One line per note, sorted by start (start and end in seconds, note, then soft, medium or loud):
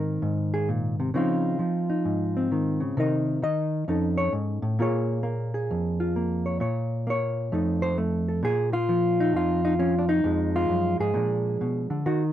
0.00 0.21 G#2 medium
0.00 1.13 D#3 medium
0.00 1.15 C4 soft
0.00 1.16 D#4 medium
0.00 0.52 A#4 medium
0.22 1.11 G#2 medium
0.54 0.68 G#4 medium
0.69 0.98 A#2 medium
1.00 1.14 C3 medium
1.14 1.59 C#3 medium
1.14 1.58 F3 medium
1.14 2.35 C4 medium
1.14 1.89 D#4 medium
1.14 2.97 F4 medium
1.59 2.50 F3 medium
1.90 2.94 D#4 medium
2.05 2.94 G#2 medium
2.37 2.94 C4 medium
2.52 2.80 D#3 medium
2.80 2.96 C#3 medium
2.97 3.41 C3 medium
2.97 3.41 D#3 medium
2.97 3.86 D#4 medium
2.97 3.86 A#4 soft
2.97 3.42 D#5 medium
3.42 3.87 D#3 medium
3.42 4.17 D#5 medium
3.88 4.32 F2 medium
3.88 4.79 C#4 soft
3.88 4.76 D#4 medium
3.88 4.77 A4 soft
4.18 4.32 C#5 medium
4.33 4.62 G#2 medium
4.62 4.77 A2 medium
4.79 5.69 A#2 medium
4.79 5.22 A#3 medium
4.79 6.00 F4 medium
4.79 5.53 G#4 medium
4.79 6.45 C#5 medium
5.23 6.14 A#3 medium
5.54 6.58 G#4 medium
5.71 6.60 F2 medium
6.00 7.53 F4 medium
6.16 6.58 A#3 medium
6.46 6.61 C#5 medium
6.60 7.50 A#2 medium
6.60 7.05 C#5 medium
7.07 7.49 A#3 medium
7.07 7.82 C#5 medium
7.52 8.42 F2 medium
7.52 7.97 A3 soft
7.52 8.41 D#4 soft
7.52 8.27 A4 soft
7.82 7.97 C5 loud
7.98 8.40 A3 medium
8.28 8.41 A4 soft
8.43 9.33 A#2 medium
8.43 8.72 G#4 loud
8.73 9.33 F4 loud
8.89 9.79 F3 medium
9.20 9.64 D#4 medium
9.33 10.23 F2 medium
9.33 10.09 F4 medium
9.65 9.73 D#4 medium
9.79 10.24 F3 medium
9.79 9.98 C#4 medium
9.99 10.07 D4 medium
10.09 10.99 D#4 medium
10.24 10.69 F2 medium
10.24 11.15 F3 medium
10.24 11.14 G#3 soft
10.56 11.00 F4 medium
10.69 10.98 F#2 medium
11.00 11.15 G#2 medium
11.00 12.06 G#4 medium
11.14 11.59 A#2 medium
11.14 12.05 F3 soft
11.14 12.06 G#3 soft
11.14 12.04 D4 soft
11.61 11.90 B2 medium
11.90 12.05 D3 medium
12.06 12.33 D#3 medium
12.06 12.33 D#4 medium
12.06 12.22 F#4 medium